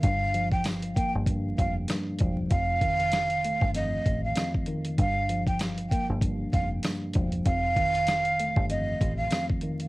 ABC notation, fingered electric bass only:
X:1
M:4/4
L:1/16
Q:"Swing 16ths" 1/4=97
K:Gm
V:1 name="Fingered electric bass" clef=bass
G,,,6- G,,, G,,,3 F,,,2 z2 =E,,,2 | F,,,6- F,,, G,,,3 A,,,2 z4 | G,,,6- G,,, G,,,3 F,,,2 z2 =E,,,2 | F,,,6- F,,, G,,,3 A,,,2 z4 |]